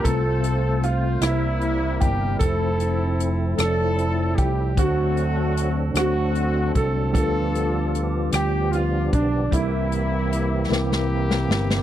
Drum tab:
HH |x-x-x-x-x-x-|x-x-x-x-x-x-|x-x-x-x-x-x-|x-x-x-x-x-x-|
SD |------r-----|------r-----|------r-----|------r-----|
BD |o---------o-|o---------o-|o---------o-|o---------o-|

HH |x-x-x-------|
SD |------oo-ooo|
BD |o-----------|